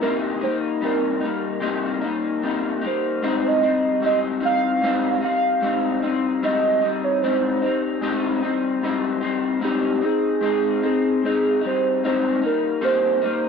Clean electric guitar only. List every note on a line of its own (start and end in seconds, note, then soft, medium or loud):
0.01 0.42 C3 medium
0.01 0.43 G3 medium
0.01 0.42 A#3 medium
0.01 0.40 D#4 medium
0.41 0.81 G3 soft
0.41 0.82 A#3 soft
0.41 0.82 D#4 medium
0.81 1.22 C3 medium
0.81 1.22 G3 medium
0.81 1.21 A#3 medium
0.81 1.19 D#4 medium
1.21 1.61 A#3 soft
1.21 1.62 D#4 medium
1.25 1.60 G3 soft
1.60 2.02 C3 medium
1.60 2.02 G3 medium
1.60 2.02 A#3 medium
1.60 2.00 D#4 medium
2.01 2.43 A#3 medium
2.01 2.42 D#4 medium
2.05 2.42 G3 soft
2.42 2.83 C3 medium
2.42 2.83 G3 medium
2.42 2.82 A#3 medium
2.42 2.80 D#4 medium
2.81 3.21 G3 soft
2.81 3.23 A#3 soft
2.81 3.22 D#4 medium
3.22 3.62 G#2 medium
3.22 3.63 G3 medium
3.22 3.61 C4 medium
3.22 3.60 D#4 medium
3.61 4.01 G3 soft
3.61 4.02 C4 soft
3.61 4.02 D#4 medium
4.00 4.41 G#2 medium
4.00 4.42 G3 medium
4.00 4.42 C4 medium
4.00 4.39 D#4 medium
4.40 4.82 C4 soft
4.40 4.82 D#4 medium
4.44 4.82 G3 soft
4.82 5.22 G#2 medium
4.82 5.23 G3 medium
4.82 5.21 C4 medium
4.82 5.19 D#4 medium
5.21 5.61 G3 soft
5.21 5.62 C4 soft
5.21 5.62 D#4 soft
5.61 6.02 G#2 medium
5.61 6.03 G3 medium
5.61 6.03 C4 medium
5.61 6.01 D#4 medium
6.02 6.42 G3 soft
6.02 6.42 C4 soft
6.02 6.42 D#4 medium
6.43 6.83 G#2 medium
6.43 6.83 G3 medium
6.43 6.83 C4 medium
6.43 6.80 D#4 medium
6.81 7.22 G3 soft
6.81 7.23 C4 soft
6.81 7.22 D#4 soft
7.23 7.63 G#2 medium
7.23 7.63 G3 medium
7.23 7.63 C4 medium
7.23 7.61 D#4 medium
7.62 8.01 G3 soft
7.62 8.01 C4 soft
7.62 8.02 D#4 soft
8.01 8.42 G#2 medium
8.01 8.42 G3 medium
8.01 8.42 C4 medium
8.01 8.40 D#4 medium
8.41 8.82 G3 soft
8.41 8.83 C4 soft
8.41 8.82 D#4 soft
8.82 9.22 G#2 medium
8.82 9.23 G3 medium
8.82 9.21 C4 medium
8.82 9.20 D#4 medium
9.21 9.60 G3 soft
9.21 9.61 C4 medium
9.21 9.61 D#4 medium
9.60 10.01 G#2 medium
9.60 10.02 G3 medium
9.60 10.01 C4 medium
9.60 10.00 D#4 medium
10.01 10.41 C4 soft
10.01 10.42 D#4 soft
10.41 10.82 G#2 medium
10.41 10.82 C4 medium
10.41 10.81 D#4 medium
10.82 11.23 C4 medium
10.82 11.22 D#4 medium
11.23 11.63 G#2 medium
11.23 11.63 C4 medium
11.23 11.60 D#4 medium
11.61 12.03 G3 soft
11.61 12.03 C4 soft
11.61 12.02 D#4 soft
12.04 12.43 G#2 medium
12.04 12.44 G3 medium
12.04 12.43 C4 medium
12.04 12.40 D#4 medium
12.42 12.81 G3 soft
12.42 12.81 A#3 soft
12.42 12.82 D#4 soft
12.81 13.22 C3 medium
12.81 13.22 G3 medium
12.81 13.23 A#3 medium
12.81 13.20 D#4 medium
13.22 13.49 G3 soft
13.22 13.49 A#3 soft
13.22 13.49 D#4 medium